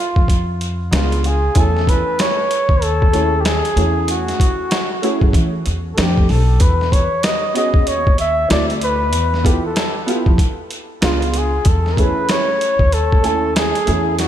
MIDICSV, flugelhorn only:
0, 0, Header, 1, 2, 480
1, 0, Start_track
1, 0, Tempo, 631579
1, 1180, Time_signature, 4, 2, 24, 8
1, 10851, End_track
2, 0, Start_track
2, 0, Title_t, "Flugelhorn"
2, 0, Program_c, 0, 56
2, 0, Note_on_c, 0, 65, 90
2, 429, Note_off_c, 0, 65, 0
2, 724, Note_on_c, 0, 65, 82
2, 965, Note_on_c, 0, 68, 88
2, 976, Note_off_c, 0, 65, 0
2, 1193, Note_off_c, 0, 68, 0
2, 1208, Note_on_c, 0, 69, 95
2, 1437, Note_on_c, 0, 71, 93
2, 1448, Note_off_c, 0, 69, 0
2, 1678, Note_on_c, 0, 73, 103
2, 1689, Note_off_c, 0, 71, 0
2, 2148, Note_on_c, 0, 69, 95
2, 2160, Note_off_c, 0, 73, 0
2, 2588, Note_on_c, 0, 67, 61
2, 2599, Note_off_c, 0, 69, 0
2, 2632, Note_on_c, 0, 68, 98
2, 2643, Note_off_c, 0, 67, 0
2, 3106, Note_off_c, 0, 68, 0
2, 3119, Note_on_c, 0, 66, 84
2, 4039, Note_off_c, 0, 66, 0
2, 4514, Note_on_c, 0, 69, 53
2, 4557, Note_on_c, 0, 67, 79
2, 4568, Note_off_c, 0, 69, 0
2, 4789, Note_on_c, 0, 69, 78
2, 4800, Note_off_c, 0, 67, 0
2, 5027, Note_on_c, 0, 71, 91
2, 5039, Note_off_c, 0, 69, 0
2, 5263, Note_on_c, 0, 73, 87
2, 5275, Note_off_c, 0, 71, 0
2, 5504, Note_on_c, 0, 75, 92
2, 5516, Note_off_c, 0, 73, 0
2, 5742, Note_off_c, 0, 75, 0
2, 5748, Note_on_c, 0, 75, 89
2, 5991, Note_on_c, 0, 73, 99
2, 6002, Note_off_c, 0, 75, 0
2, 6226, Note_off_c, 0, 73, 0
2, 6234, Note_on_c, 0, 76, 85
2, 6451, Note_off_c, 0, 76, 0
2, 6472, Note_on_c, 0, 74, 95
2, 6578, Note_off_c, 0, 74, 0
2, 6715, Note_on_c, 0, 71, 94
2, 7191, Note_on_c, 0, 67, 81
2, 7203, Note_off_c, 0, 71, 0
2, 7340, Note_off_c, 0, 67, 0
2, 7345, Note_on_c, 0, 69, 75
2, 7789, Note_off_c, 0, 69, 0
2, 8395, Note_on_c, 0, 65, 84
2, 8646, Note_on_c, 0, 68, 84
2, 8658, Note_off_c, 0, 65, 0
2, 8878, Note_on_c, 0, 69, 88
2, 8890, Note_off_c, 0, 68, 0
2, 9067, Note_on_c, 0, 70, 70
2, 9078, Note_off_c, 0, 69, 0
2, 9122, Note_on_c, 0, 71, 94
2, 9133, Note_off_c, 0, 70, 0
2, 9353, Note_on_c, 0, 73, 110
2, 9364, Note_off_c, 0, 71, 0
2, 9831, Note_on_c, 0, 69, 97
2, 9843, Note_off_c, 0, 73, 0
2, 10306, Note_off_c, 0, 69, 0
2, 10314, Note_on_c, 0, 68, 97
2, 10757, Note_off_c, 0, 68, 0
2, 10794, Note_on_c, 0, 66, 80
2, 10851, Note_off_c, 0, 66, 0
2, 10851, End_track
0, 0, End_of_file